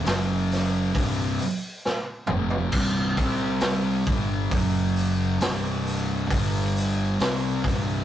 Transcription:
0.04 0.91 F#1 loud
0.04 0.93 F#2 medium
0.04 0.93 C#3 loud
0.04 0.93 F#3 loud
0.04 snare loud
0.04 open hi-hat medium
0.51 snare soft
0.51 open hi-hat medium
0.95 1.37 C1 medium
0.95 1.38 C2 loud
0.95 1.39 G2 medium
0.95 1.39 C3 loud
0.95 kick loud
0.95 open hi-hat medium
1.39 open hi-hat medium
1.85 snare medium
2.27 2.71 F1 medium
2.27 2.72 F2 medium
2.27 2.73 C3 medium
2.27 2.73 F3 medium
2.27 mid tom loud
2.50 floor tom medium
2.72 3.15 C1 medium
2.72 3.17 C2 loud
2.72 3.18 G2 loud
2.72 kick loud
2.72 crash loud
2.76 3.18 C3 loud
3.17 4.03 C2 loud
3.17 4.07 C3 medium
3.17 4.06 G3 medium
3.17 4.07 C4 medium
3.17 kick medium
3.17 open hi-hat medium
3.60 snare loud
3.60 open hi-hat medium
4.07 4.49 G1 loud
4.07 4.51 G2 loud
4.07 4.52 D3 loud
4.07 4.52 G3 loud
4.07 kick loud
4.07 open hi-hat medium
4.51 5.37 F#1 medium
4.51 5.41 F#2 loud
4.51 5.41 C#3 loud
4.51 5.41 F#3 loud
4.51 kick loud
4.51 open hi-hat medium
4.96 open hi-hat medium
5.41 6.27 C1 medium
5.41 6.29 C2 medium
5.41 6.29 G2 medium
5.41 6.30 C3 loud
5.41 snare loud
5.41 open hi-hat medium
5.86 open hi-hat medium
6.30 7.15 G1 medium
6.30 7.18 G2 loud
6.30 7.19 D3 loud
6.30 7.19 G3 loud
6.30 kick loud
6.30 open hi-hat medium
6.76 open hi-hat medium
7.20 7.61 C2 loud
7.20 7.63 C3 medium
7.20 7.63 G3 loud
7.20 7.63 C4 loud
7.20 snare loud
7.20 open hi-hat medium
7.64 8.04 C1 loud
7.64 8.04 C2 medium
7.64 8.04 G2 loud
7.64 8.04 C3 loud
7.64 kick loud
7.64 snare soft
7.64 open hi-hat medium

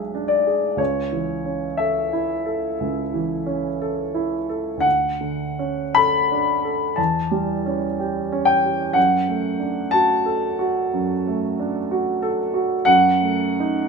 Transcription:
0.00 0.75 B1 soft
0.00 0.81 G#3 soft
0.00 0.15 D4 soft
0.00 0.33 G#4 soft
0.00 0.28 E5 soft
0.15 0.67 D4 soft
0.28 0.78 D5 medium
0.47 0.79 G#4 soft
0.77 2.75 C#2 soft
0.77 1.79 C#5 medium
1.12 1.66 E3 soft
1.45 1.99 C#4 soft
1.77 2.33 A4 soft
1.77 4.32 E5 medium
2.13 2.66 E4 soft
2.46 3.00 A4 soft
2.80 4.81 C#2 soft
3.14 3.68 E3 soft
3.46 4.01 C#4 soft
3.81 4.36 A4 soft
4.14 4.70 E4 soft
4.49 4.85 A4 soft
4.77 6.90 D2 soft
4.77 5.96 F#5 medium
5.21 5.83 D3 soft
5.59 6.18 C#4 soft
5.95 6.52 A4 soft
5.95 6.96 B5 medium
6.32 6.84 D4 soft
6.64 6.98 A4 soft
6.96 8.92 E2 soft
6.96 8.48 A5 soft
7.31 7.86 G3 soft
7.66 8.20 C#4 soft
7.99 8.52 G4 soft
8.32 8.83 C#4 soft
8.45 8.95 G5 medium
8.65 8.96 G4 soft
8.93 10.88 F#2 soft
8.93 9.92 F#5 medium
9.28 9.80 A3 soft
9.60 10.12 D4 soft
9.91 10.46 F#4 soft
9.91 12.37 A5 medium
10.25 10.79 A4 soft
10.59 11.13 F#4 soft
10.94 12.83 F#2 soft
11.27 11.78 A3 soft
11.59 12.10 D4 soft
11.91 12.41 F#4 soft
12.22 12.74 A4 soft
12.54 12.87 F#4 soft
12.85 13.88 F#2 soft
12.85 13.88 F#5 medium
13.21 13.81 A3 soft
13.60 13.88 D#4 soft

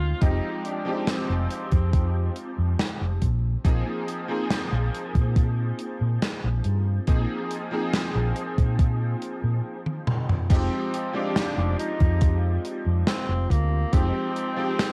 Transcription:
0.00 0.12 D2 medium
0.00 0.16 F3 medium
0.00 0.17 G#3 medium
0.00 0.17 C4 medium
0.00 0.17 D#4 medium
0.00 0.23 F4 loud
0.00 0.18 G5 loud
0.21 0.39 F1 loud
0.21 0.81 F3 medium
0.21 0.81 G#3 medium
0.21 0.81 C4 medium
0.21 0.64 D#4 loud
0.21 0.81 D#4 medium
0.21 0.82 G4 loud
0.21 kick loud
0.21 closed hi-hat medium
0.65 1.09 D4 medium
0.65 closed hi-hat medium
0.85 3.19 F3 medium
0.85 3.19 G#3 medium
0.85 3.19 C4 medium
0.85 3.20 D#4 medium
0.85 3.20 G4 loud
1.07 2.79 C4 medium
1.07 snare loud
1.07 closed hi-hat medium
1.30 1.46 F1 medium
1.50 closed hi-hat medium
1.72 2.28 F2 loud
1.72 kick loud
1.72 closed hi-hat medium
1.93 kick loud
1.93 closed hi-hat medium
2.36 closed hi-hat medium
2.58 2.74 F2 medium
2.79 snare loud
2.79 closed hi-hat medium
3.01 3.17 F1 medium
3.22 3.55 A#1 medium
3.22 kick medium
3.22 closed hi-hat medium
3.64 3.81 A#1 loud
3.64 4.24 F3 medium
3.64 4.24 A#3 medium
3.64 4.24 C4 medium
3.64 4.24 D#4 medium
3.64 4.25 G#4 loud
3.64 kick loud
3.64 closed hi-hat medium
4.08 closed hi-hat medium
4.28 7.02 F3 medium
4.28 7.02 A#3 medium
4.28 7.03 C4 medium
4.28 7.03 D#4 medium
4.28 7.03 G#4 loud
4.51 snare loud
4.51 closed hi-hat medium
4.72 4.88 A#1 medium
4.95 closed hi-hat medium
5.15 5.71 A#2 loud
5.15 kick loud
5.15 closed hi-hat soft
5.36 kick loud
5.36 closed hi-hat medium
5.79 closed hi-hat medium
6.01 6.17 A#2 medium
6.22 snare loud
6.22 closed hi-hat medium
6.44 6.60 A#1 medium
6.64 6.98 G2 medium
6.64 closed hi-hat medium
7.07 7.24 A#1 loud
7.07 7.67 F3 medium
7.07 7.67 A#3 medium
7.07 7.67 C4 medium
7.07 7.67 D#4 medium
7.07 7.67 G#4 loud
7.07 kick loud
7.07 closed hi-hat medium
7.51 closed hi-hat medium
7.71 9.64 F3 medium
7.71 9.64 A#3 medium
7.71 9.65 C4 medium
7.71 9.65 D#4 medium
7.71 9.65 G#4 loud
7.93 snare loud
7.93 closed hi-hat medium
8.15 8.31 A#1 medium
8.36 closed hi-hat medium
8.58 9.14 A#2 loud
8.58 kick loud
8.58 closed hi-hat medium
8.79 kick loud
8.79 closed hi-hat medium
9.22 closed hi-hat medium
9.44 9.60 A#2 medium
9.86 high tom soft
10.07 mid tom medium
10.29 mid tom medium
10.50 10.67 F1 loud
10.50 11.09 F3 medium
10.50 11.10 G#3 medium
10.50 11.10 C4 medium
10.50 11.17 C4 loud
10.50 11.10 D#4 medium
10.50 11.10 G4 loud
10.50 kick loud
10.50 closed hi-hat medium
10.50 crash loud
10.94 closed hi-hat medium
11.13 13.87 F3 loud
11.13 13.88 G#3 medium
11.13 13.88 C4 medium
11.13 11.79 D4 loud
11.13 13.89 F4 medium
11.13 13.89 G4 loud
11.36 snare loud
11.36 closed hi-hat medium
11.58 11.74 F1 medium
11.79 12.61 D#4 loud
11.79 closed hi-hat medium
12.00 12.57 F2 loud
12.00 kick loud
12.00 closed hi-hat medium
12.21 kick loud
12.21 closed hi-hat medium
12.65 closed hi-hat medium
12.87 13.03 F2 medium
13.07 13.52 C4 loud
13.07 snare loud
13.07 closed hi-hat medium
13.29 13.45 F1 medium
13.50 13.83 D2 medium
13.50 13.95 A#3 loud
13.50 kick medium
13.50 closed hi-hat medium
13.92 14.10 F1 loud
13.92 14.52 F3 medium
13.92 14.53 G#3 medium
13.92 14.92 C4 loud
13.92 14.53 C4 medium
13.92 14.53 D#4 medium
13.92 14.53 G4 loud
13.92 kick loud
13.92 closed hi-hat loud
14.36 closed hi-hat medium
14.56 14.92 F3 medium
14.56 14.92 G#3 medium
14.56 14.92 C4 medium
14.56 14.92 D#4 medium
14.56 14.92 G4 loud
14.79 snare loud
14.79 closed hi-hat loud

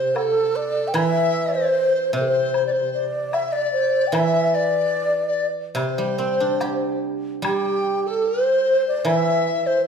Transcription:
0.00 0.94 C3 medium
0.00 0.17 C5 medium
0.00 0.19 C5 medium
0.15 0.57 A4 medium
0.15 0.96 A4 medium
0.15 high woodblock soft
0.15 low woodblock soft
0.56 0.89 D5 medium
0.88 0.96 G5 medium
0.94 3.32 E3 medium
0.94 1.55 E5 medium
0.94 1.57 E5 loud
0.94 high woodblock medium
1.54 2.14 C5 medium
1.54 2.15 C5 medium
2.13 4.13 C3 medium
2.13 2.23 C5 medium
2.13 2.90 C5 medium
2.21 2.29 A4 medium
2.27 2.66 C5 medium
2.54 high woodblock soft
2.66 2.74 D5 medium
2.72 3.05 C5 medium
2.94 3.35 D5 medium
3.32 3.53 E5 medium
3.32 3.54 E5 medium
3.32 high woodblock soft
3.32 low woodblock soft
3.52 4.15 D5 medium
3.52 3.72 D5 medium
3.73 4.09 C5 medium
4.07 4.15 G5 medium
4.12 6.59 E3 medium
4.12 4.56 E5 medium
4.12 4.48 E5 medium
4.12 high woodblock soft
4.48 4.57 E5 medium
4.54 5.27 D5 medium
4.54 5.49 D5 medium
5.28 5.47 D5 medium
5.75 8.25 C3 medium
5.75 6.98 C5 medium
5.75 6.99 C5 medium
5.75 high woodblock soft
5.98 7.41 G3 soft
6.18 7.85 C4 soft
6.40 8.06 D4 soft
6.60 8.26 G4 soft
6.60 high woodblock soft
6.60 low woodblock soft
7.42 9.85 G3 medium
7.42 8.09 G4 medium
7.42 8.01 G5 medium
7.42 high woodblock medium
8.06 8.27 A4 medium
8.06 8.30 A4 medium
8.26 9.06 C5 medium
8.26 8.87 C5 medium
8.88 9.06 D5 medium
9.05 9.87 E3 medium
9.05 9.68 E5 medium
9.05 high woodblock soft
9.67 9.85 C5 medium

